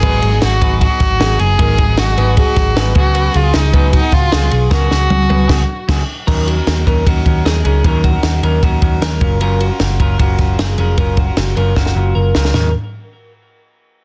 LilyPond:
<<
  \new Staff \with { instrumentName = "Clean electric guitar" } { \time 4/4 \key ees \minor \tempo 4 = 153 ces''8 aes'4 ces''8 ges'4 aes'8 aes'8 | bes'8 aes'4 ces''8 aes'4 ces''4 | ces''8 aes'4 ces''8 ges'4 aes'8 aes'8 | bes'8 aes'4 ces''8 r2 |
bes'8 ges'4 bes'8 ges'4 aes'8 aes'8 | bes'8 ges'4 bes'8 ges'4 bes'4 | bes'8 ges'4 bes'8 ges'4 aes'8 aes'8 | bes'8 ges'4 bes'8 ges'4 bes'4 |
bes'8 r2. r8 | }
  \new Staff \with { instrumentName = "Violin" } { \time 4/4 \key ees \minor aes'4 ges'4 ges'4. aes'8~ | aes'4 ges'4 ges'4. ges'8~ | ges'8 f'8 ees'4 ees'8 f'4 r8 | ges'2. r4 |
r1 | r1 | r1 | r1 |
r1 | }
  \new Staff \with { instrumentName = "Clean electric guitar" } { \time 4/4 \key ees \minor <aes, ees ges ces' ees' aes'>8. <ges ces' ees' aes'>8. <ges ces' ees' aes'>8. <ges ces' ees' aes'>8. <ges ces' ees' aes'>4 | <aes, ees ges ces' ees' aes'>8. <ges ces' ees' aes'>8. <ges ces' ees' aes'>8. <ges ces' ees' aes'>8. <ges ces' ees' aes'>8 <des ges ces' ges' aes'>8~ | <des ges ces' ges' aes'>8. <ces' ges' aes'>8. <ges ces' ges' aes'>8. <ces' ges' aes'>8. <ges ces' ges' aes'>4 | <des ges ces' ges' aes'>8. <ces' ges' aes'>8. <ges ces' ges' aes'>8 <ces' ges' aes'>8 r8 <ges ces' ges' aes'>8 r8 |
<ees ges des' ees' bes'>8. <des' ees' bes'>8. <ges des' ees' bes'>8 <ges des' ees' bes'>8 <ges des' ees' bes'>4 <ges des' ees' bes'>8 | <ees ges des' ees' bes'>8. <des' ees' bes'>8. <ges des' ees' bes'>8 <ges des' ees' bes'>8 <ges des' ees' bes'>4 <ges des' f' bes'>8 | <ges des' f' bes'>8. <des' f' bes'>8. <ges des' f' bes'>8 <ges des' f' bes'>8 <ges des' f' bes'>4 <ges des' f' bes'>8 | <ges des' f' bes'>8. <des' f' bes'>8. <ges des' f' bes'>8 <ges des' f' bes'>8 <ges des' f' bes'>4 <ges des' f' bes'>8 |
<ees ges des' ees' bes'>8 r2. r8 | }
  \new Staff \with { instrumentName = "Picked electric bass" } { \clef bass \time 4/4 \key ees \minor aes,,8 aes,,8 aes,,8 aes,,8. r16 aes,,8 aes,,8 ges,,8 | aes,,8 aes,,8 aes,,8 aes,,8. r16 aes,,8 aes,,8 des,8~ | des,8 des,8 r8 des,8. r16 des,8 des,8 ces,8 | des,8 des,8 des,8 des,8 des,8 r8 des,8 r8 |
ees,4 ees,8 ees,8 ees,8 ees,8 ees,8 des,8 | ees,4 ees,8 ees,8 ees,8 ees,8 ees,8 ges,,8~ | ges,,4 ges,,8 ges,,8 ges,,8 ges,,8 ges,,8 f,,8 | ges,,4 ges,,8 ges,,8 r8 ges,,8 ges,,8 des,8 |
ees,8 r2. r8 | }
  \new DrumStaff \with { instrumentName = "Drums" } \drummode { \time 4/4 <cymc bd>8 cymr8 <cymr sn>8 <bd cymr>8 <bd cymr>8 <bd cymr sn>8 <cymr sn>8 cymr8 | <bd cymr>8 <bd cymr>8 <cymr sn>8 cymr8 <bd cymr>8 <bd cymr sn>8 <cymr sn>8 <bd cymr>8 | cymr8 cymr8 <cymr sn>8 <bd cymr>8 <bd cymr>8 <bd cymr sn>8 <cymr sn>8 cymr8 | <bd sn>8 sn8 tommh8 tommh8 <cymc bd sn>4 <cymc bd sn>4 |
<cymc bd>8 cymr8 <cymr sn>8 <bd cymr>8 <bd cymr>8 <bd cymr>8 <cymr sn>8 cymr8 | <bd cymr>8 <bd cymr>8 <cymr sn>8 cymr8 <bd cymr>8 <bd cymr>8 <cymr sn>8 <bd cymr>8 | cymr8 cymr8 <cymr sn>8 <bd cymr>8 <bd cymr>8 <bd cymr sn>8 <cymr sn>8 cymr8 | <bd cymr>8 <bd cymr>8 <cymr sn>8 cymr8 <bd sn>16 sn8. r8 sn16 sn16 |
<sn tomfh>4 r4 r4 r4 | }
>>